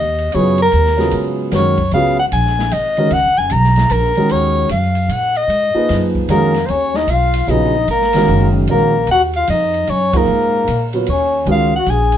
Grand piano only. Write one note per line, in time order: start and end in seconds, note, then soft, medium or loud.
0.34 0.57 C#3 medium
0.34 0.57 F#3 medium
0.34 0.58 B3 medium
0.34 0.58 F4 medium
0.34 0.58 G#4 medium
0.97 1.49 C#3 medium
0.97 1.49 F#3 medium
0.97 1.50 B3 medium
0.97 1.50 F4 medium
0.97 1.50 G#4 medium
1.52 1.76 D#3 medium
1.52 1.76 G#3 medium
1.52 1.76 C#4 medium
1.52 1.76 F#4 medium
1.52 1.76 A#4 medium
1.94 2.16 C#3 medium
1.94 2.17 F#3 medium
1.94 2.17 B3 medium
1.94 2.17 F4 medium
1.94 2.17 G#4 medium
2.98 3.10 D#3 medium
2.98 3.11 G#3 medium
2.98 3.11 C#4 medium
2.98 3.11 F#4 medium
2.98 3.11 A#4 medium
4.17 4.68 D#3 medium
4.17 4.68 G#3 medium
4.17 4.68 C#4 medium
4.17 4.68 F#4 medium
4.17 4.69 A#4 medium
5.75 6.26 A#2 medium
5.75 6.26 F3 medium
5.75 6.27 D#4 medium
5.75 6.27 G#4 medium
5.75 6.27 B4 medium
6.29 6.53 D#3 medium
6.29 6.53 G#3 medium
6.29 6.53 C#4 medium
6.29 6.54 F#4 medium
6.29 6.53 G#4 medium
7.48 7.72 C#3 medium
7.48 7.72 F#3 medium
7.48 7.72 B3 medium
7.48 7.73 F4 medium
7.48 7.73 G#4 medium
8.15 8.66 D#3 medium
8.15 8.66 G#3 medium
8.15 8.66 C#4 medium
8.15 8.67 F#4 medium
8.15 8.67 A#4 medium
8.69 8.92 D#3 medium
8.69 8.92 G#3 medium
8.69 8.92 C#4 medium
8.69 8.93 F#4 medium
8.69 8.93 A#4 medium
10.14 10.65 A#2 medium
10.14 10.65 F3 medium
10.14 10.65 D#4 medium
10.14 10.66 G#4 medium
10.14 10.66 A#4 medium
10.94 11.06 F#3 medium
10.94 11.06 B3 medium
10.94 11.06 F4 medium
10.94 11.07 A#4 medium
10.94 11.07 C#5 medium
11.47 11.70 D#3 medium
11.47 11.70 G#3 medium
11.47 11.70 C#4 medium
11.47 11.71 F#4 medium
11.47 11.71 A#4 medium